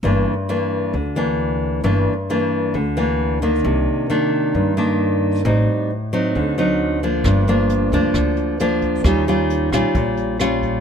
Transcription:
<<
  \new Staff \with { instrumentName = "Nylon-string guitar" } { \time 4/4 \key g \minor \tempo 4 = 133 << { <e bes d'>8 r8 <e bes d'>4 r8 <e bes d'>4. | <e bes d'>8 r8 <e bes d'>4 r8 <e bes d'>4 <ees bes d'>8~ | <ees bes d'>4 <ees bes d'>4. <ees bes d'>4. | <g c' ees'>4 r8 <fis c' ees'>4 <fis c' ees'>4 <f bes d'>8~ |
<f bes d'>8 <f bes d'>4 <f bes d'>4. <f bes d'>4 | <g des' f'>8 <g des' f'>4 <g des' f'>4. <g des' f'>4 | } \\ { g,2 d2 | g,2 d2 | c2 g,2 | a,2 d2 |
g,2 d2 | ees2 bes,2 | } >> }
  \new Staff \with { instrumentName = "Upright bass" } { \clef bass \time 4/4 \key g \minor g,,8 r4. d,2 | g,,8 r4. d,2 | c,8 r4. g,2 | a,,8 r4. d,2 |
g,,4. d,16 r16 d,2 | ees,4. bes,,16 r16 bes,,2 | }
  \new DrumStaff \with { instrumentName = "Drums" } \drummode { \time 4/4 r4 r4 r4 r4 | r4 r4 r4 r4 | r4 r4 r4 r4 | r4 r4 r4 r4 |
<hh bd ss>8 hh8 hh8 <hh bd>8 <hh bd ss>8 hh8 hh8 <hh bd>8 | <hh bd ss>8 hh8 hh8 <hh bd ss>8 <hh bd>8 hh8 <hh ss>8 <hh bd>8 | }
>>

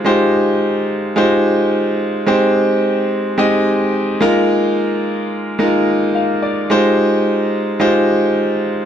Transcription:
\new Staff \with { instrumentName = "Grand piano" } { \time 4/4 \key f \minor \tempo 4 = 108 << { r1 | r1 | r2. f''8 d''8 | r1 | } \\ { <aes ees' f' g' c''>4. r8 <aes ees' f' g' c''>4. r8 | <aes c' ees' g' c''>4. r8 <aes c' ees' g' ees''>4. <aes bes ees' f' bes'>8~ | <aes bes ees' f' bes'>4 r4 <aes bes ees' f' bes'>4. r8 | <aes ees' f' g' c''>4. r8 <aes ees' f' g' c''>4. r8 | } >> }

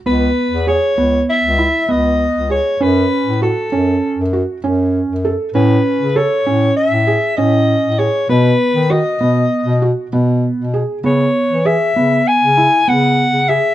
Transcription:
<<
  \new Staff \with { instrumentName = "Soprano saxophone" } { \time 9/8 \key cis \minor \tempo 4. = 66 b'4 cis''4 e''4 dis''4 cis''8 | b'4 a'4. r2 | b'4 cis''4 e''4 dis''4 cis''8 | b'4 dis''4. r2 |
cis''4 e''4 gis''4 fis''4 e''8 | }
  \new Staff \with { instrumentName = "Felt piano" } { \time 9/8 \key cis \minor b4 gis'8 b4 e'8 b4 gis'8 | cis'4 fis'8 cis'4 fis'8 cis'4 a'8 | cis'4 a'8 cis'4 gis'8 cis'4 gis'8 | b4 fis'8 b4 fis'8 b4 gis'8 |
b4 gis'8 b4 e'8 b4 gis'8 | }
  \new Staff \with { instrumentName = "Bass clarinet" } { \clef bass \time 9/8 \key cis \minor cis,8 r16 e,8 r16 cis,8 r16 cis,8 r16 cis,8. cis,8 r16 | fis,8 r16 a,8 r16 fis,8 r16 fis,8 r16 fis,8. fis,8 r16 | a,8 r16 cis8 r16 a,8 r16 a,8 r16 a,8. a,8 r16 | b,8 r16 dis8 r16 b,8 r16 b,8 r16 b,8. b,8 r16 |
cis8 r16 e8 r16 cis8 r16 cis8 r16 cis8. cis8 r16 | }
>>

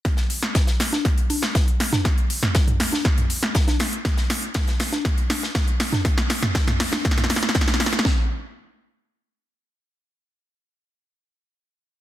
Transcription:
\new DrumStaff \with { instrumentName = "Drums" } \drummode { \time 4/4 \tempo 4 = 120 <hh bd sn>16 <hh sn>16 <hh hho>16 <hh sn>16 <hh bd sn>16 <hh sn>16 <hh hho sn>16 <cgho hh sn>16 <hh bd sn>16 hh16 <cgho hh hho>16 <hh sn>16 <hh bd sn>16 hh16 <hh hho sn>16 <cgho hh sn toml>16 | <hh bd sn>16 hh16 <hh hho>16 <hh sn toml>16 <hh bd sn>16 <hh toml>16 <hho sn>16 <cgho hh sn>16 <hh bd sn>16 <hh toml>16 <hh hho>16 <hh sn>16 <hh bd sn>16 <cgho hh sn>16 <hh hho sn>16 hh16 | <hh bd sn>16 <hh sn>16 <hh hho sn>16 hh16 <hh bd sn>16 <hh sn>16 <hh hho sn>16 <cgho hh sn>16 <hh bd sn>16 hh16 <cgho hh hho sn>16 <hh sn>16 <hh bd sn>16 hh16 <hh hho sn>16 <cgho hh sn toml>16 | <hh bd sn>16 <hh sn>16 <hh hho sn>16 <hh sn toml>16 <hh bd sn>16 <hh sn toml>16 <hho sn>16 <cgho sn>16 <hh bd sn>32 sn32 <hh sn toml>32 sn32 <hh hho sn>32 sn32 <hh sn>32 sn32 <hh bd sn>32 sn32 <cgho hh sn>32 sn32 <hh hho sn>32 sn32 <hh sn>32 sn32 |
<bd sn>4 r4 r4 r4 | r4 r4 r4 r4 | }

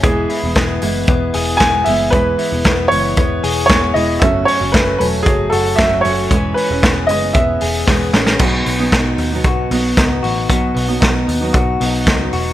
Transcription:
<<
  \new Staff \with { instrumentName = "Upright piano" } { \time 4/4 \key e \major \tempo 4 = 115 gis'2. gis''8 e''8 | b'4. cis''4. cis''8 dis''8 | e''8 cis''8 b'8 b'8 gis'8 a'8 e''8 cis''8~ | cis''8 b'4 dis''8 e''4 r4 |
r1 | r1 | }
  \new Staff \with { instrumentName = "Clean electric guitar" } { \time 4/4 \key e \major e8 e'8 b8 e'8 b8 gis'8 b8 e'8 | e8 e'8 b8 e'8 b8 gis'8 b8 e'8 | fis,8 cis'8 a8 cis'8 fis8 fis'8 a8 cis'8 | e8 cis'8 b8 cis'8 b8 gis'8 b8 cis'8 |
<b, fis'>8 b8 dis'8 b8 fis'8 b8 dis'8 fis'8 | <b, fis'>8 b8 dis'8 b8 fis'8 b8 dis'8 fis'8 | }
  \new Staff \with { instrumentName = "Steel-string acoustic guitar" } { \time 4/4 \key e \major <e gis b e'>8. <gis b e'>8. <e gis b e'>4. <e gis b e'>8 <e gis b e'>8 | <e gis b e'>8. <gis b e'>8. <e gis b e'>4. <e gis b e'>8 <e gis b e'>8 | <fis a cis' fis'>8. <a cis' fis'>8. <fis a cis' fis'>4. <fis a cis' fis'>8 <fis a cis' fis'>8 | <e gis cis' gis' b'>8. <cis' gis' b'>8. <gis cis' gis' b'>4. <gis cis' gis' b'>8 <gis cis' gis' b'>8 |
<b, fis b dis'>8. <b, fis b dis'>4 <b, fis b dis'>8. <b, fis b dis'>8. <fis b dis'>8. | <b, fis b dis'>8. <b, fis b dis'>4 <b, fis b dis'>8. <b, fis b dis'>8. <fis b dis'>8. | }
  \new Staff \with { instrumentName = "Picked electric bass" } { \clef bass \time 4/4 \key e \major e,,8 r16 e,,16 e,,8 fis,,8 e,,8 e,,8 e,,8 fis,,8 | e,,8 r16 e,,16 e,,8 fis,,8 e,,8 e,,8 e,,8 e,,8 | fis,,8 r16 fis,,16 fis,,8 e,,8 fis,,8 fis,,8 fis,,8 fis,,8 | e,,8 r16 e,,16 e,,8 fis,,8 e,,8 e,,8 e,,8 a,,8 |
b,,8 b,,8 b,,8 dis,8 b,,8 b,,8 cis,8 a,,8 | b,,8 b,,8 b,,8 dis,8 b,,8 b,,8 cis,8 e,,8 | }
  \new DrumStaff \with { instrumentName = "Drums" } \drummode { \time 4/4 <hh bd>8 hho8 <hh bd sn>8 hho8 <hh bd>8 hho8 <hh bd sn>8 hho8 | <hh bd>8 hho8 <hh bd sn>8 hho8 <hh bd>8 hho8 <hh bd sn>8 hho8 | <hh bd>8 hho8 <hh bd sn>8 hho8 <hh bd>8 hho8 <hh bd sn>8 hho8 | <hh bd>8 hho8 <hh bd sn>8 hho8 <hh bd>8 hho8 <bd sn>8 sn16 sn16 |
<cymc bd>8 hho8 <hh bd sn>8 hho8 <hh bd>8 hho8 <hh bd sn>8 hho8 | <hh bd>8 hho8 <hh bd sn>8 hho8 <hh bd>8 hho8 <hh bd sn>8 hho8 | }
>>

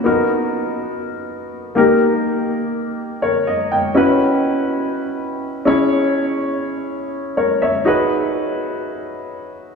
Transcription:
\new Staff \with { instrumentName = "Grand piano" } { \time 4/4 \key gis \minor \tempo 4 = 123 << { r1 | r2 r8 <ais' cis''>8 dis''8 <dis'' g''>8~ | <dis'' g''>8 r2. r8 | r2. <ais' cis''>8 <cis'' e''>8~ |
<cis'' e''>8 r2. r8 | } \\ { <b dis' fis' ais'>2.~ <b dis' fis' ais'>8 <ais dis' g' ais'>8~ | <ais dis' g' ais'>2.~ <ais dis' g' ais'>8 r8 | <cis' e' fis' b'>2.~ <cis' e' fis' b'>8 <cis' e' gis' cis''>8~ | <cis' e' gis' cis''>2.~ <cis' e' gis' cis''>8 r8 |
<dis' fis' gis' b'>1 | } >> }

